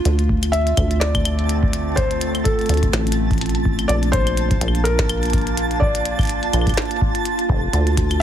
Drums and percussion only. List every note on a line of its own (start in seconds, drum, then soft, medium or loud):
0.05 closed hi-hat medium
0.19 closed hi-hat soft
0.29 kick loud
0.43 closed hi-hat loud
0.43 claves soft
0.53 closed hi-hat medium
0.67 closed hi-hat soft
0.77 kick loud
0.77 closed hi-hat loud
0.77 claves medium
0.91 closed hi-hat soft
1.01 snare loud
1.01 closed hi-hat medium
1.15 kick loud
1.15 closed hi-hat soft
1.15 claves medium
1.25 closed hi-hat loud
1.25 claves medium
1.39 closed hi-hat soft
1.49 closed hi-hat medium
1.63 kick loud
1.73 closed hi-hat loud
1.97 kick loud
1.97 closed hi-hat medium
2.11 closed hi-hat soft
2.21 closed hi-hat medium
2.35 closed hi-hat soft
2.35 claves soft
2.45 kick loud
2.45 closed hi-hat medium
2.59 closed hi-hat soft
2.61 closed hi-hat soft
2.66 closed hi-hat soft
2.69 closed hi-hat loud
2.74 closed hi-hat soft
2.77 closed hi-hat soft
2.83 kick loud
2.83 closed hi-hat soft
2.93 snare loud
2.93 closed hi-hat medium
3.07 closed hi-hat soft
3.12 closed hi-hat medium
3.31 kick loud
3.31 closed hi-hat soft
3.33 closed hi-hat soft
3.38 closed hi-hat soft
3.41 closed hi-hat medium
3.46 closed hi-hat soft
3.49 closed hi-hat soft
3.55 closed hi-hat soft
3.65 kick loud
3.79 closed hi-hat soft
3.79 claves soft
3.89 closed hi-hat medium
4.03 closed hi-hat soft
4.13 kick loud
4.13 closed hi-hat medium
4.27 closed hi-hat soft
4.27 claves soft
4.37 closed hi-hat medium
4.51 kick loud
4.51 closed hi-hat soft
4.61 closed hi-hat loud
4.68 claves medium
4.75 closed hi-hat soft
4.85 closed hi-hat medium
4.99 kick loud
4.99 snare loud
5.09 closed hi-hat medium
5.09 claves medium
5.23 closed hi-hat soft
5.25 closed hi-hat soft
5.30 kick loud
5.30 closed hi-hat soft
5.33 closed hi-hat medium
5.38 closed hi-hat soft
5.41 closed hi-hat soft
5.47 closed hi-hat soft
5.57 closed hi-hat loud
5.71 closed hi-hat soft
5.81 kick loud
5.95 closed hi-hat medium
6.05 closed hi-hat medium
6.19 kick loud
6.19 closed hi-hat soft
6.19 claves soft
6.21 closed hi-hat soft
6.23 closed hi-hat soft
6.25 closed hi-hat soft
6.27 closed hi-hat soft
6.29 closed hi-hat medium
6.43 closed hi-hat soft
6.53 closed hi-hat loud
6.53 claves soft
6.61 claves soft
6.67 kick loud
6.67 closed hi-hat soft
6.69 closed hi-hat soft
6.69 claves soft
6.74 snare loud
6.74 closed hi-hat soft
6.77 closed hi-hat medium
6.85 closed hi-hat soft
6.91 closed hi-hat soft
7.01 kick loud
7.15 closed hi-hat soft
7.25 closed hi-hat medium
7.39 closed hi-hat soft
7.49 kick loud
7.73 closed hi-hat medium
7.87 closed hi-hat soft
7.97 kick loud
7.97 closed hi-hat medium
8.11 closed hi-hat soft
8.11 claves soft